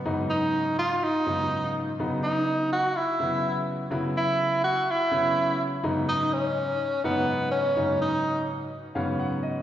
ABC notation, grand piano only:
X:1
M:4/4
L:1/16
Q:"Swing 16ths" 1/4=124
K:C#m
V:1 name="Grand piano"
z16 | z16 | z16 | z16 |
z8 z2 ^e2 f2 d2 |]
V:2 name="Grand piano" clef=bass
[G,,C,F,B,D]6 z4 [G,,C,F,B,D]4- [G,,C,F,B,D] z | [C,F,B,D]6 z4 [C,F,B,E]4- [C,F,B,E] z | [C,F,B,E]6 z4 [C,F,B,C]4- [C,F,B,C] z | [G,,C,F,B,D]6 z4 [G,,C,F,B,D]4- [G,,C,F,B,D] z |
[G,,C,F,B,D]6 z4 [G,,C,F,B,C]4- [G,,C,F,B,C] z |]